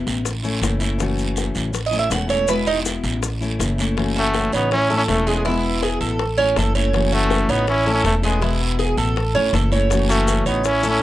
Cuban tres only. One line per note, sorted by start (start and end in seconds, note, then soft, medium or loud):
1.86 1.98 D#5 medium
1.99 2.11 E5 loud
2.12 2.29 F#5 loud
2.30 2.48 C#5 loud
2.49 2.67 B4 medium
2.67 2.78 D#4 medium
4.16 4.52 F#4 medium
4.53 4.89 C#5 medium
4.90 5.26 A4 medium
5.27 5.44 G#4 medium
5.45 5.81 E4 medium
5.83 6.00 G#4 medium
6.01 6.37 A4 medium
6.38 6.56 C#4 medium
6.57 6.75 A4 medium
6.75 7.11 C#5 medium
7.12 7.48 F#4 medium
7.49 7.85 C#5 medium
7.87 8.23 A4 medium
8.23 8.42 G#4 medium
8.42 8.78 E4 medium
8.79 8.97 G#4 medium
8.98 9.34 A4 medium
9.35 9.53 C#4 medium
9.54 9.72 A4 medium
9.72 10.08 C#5 medium
10.09 10.45 F#4 medium
10.46 10.82 C#5 medium
10.83 11.03 A4 medium